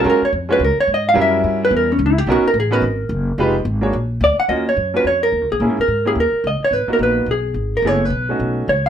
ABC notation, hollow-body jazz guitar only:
X:1
M:4/4
L:1/8
Q:"Swing" 1/4=216
K:Ebm
V:1 name="Hollow-body jazz guitar"
B d z c B d e f | _f3 c B D _F =G | ^F ^A _A ^A4- A | z6 =d ^f |
e d2 c d B2 A- | A B2 A B2 e d | c B c2 A3 B | d c4- c ^c z |]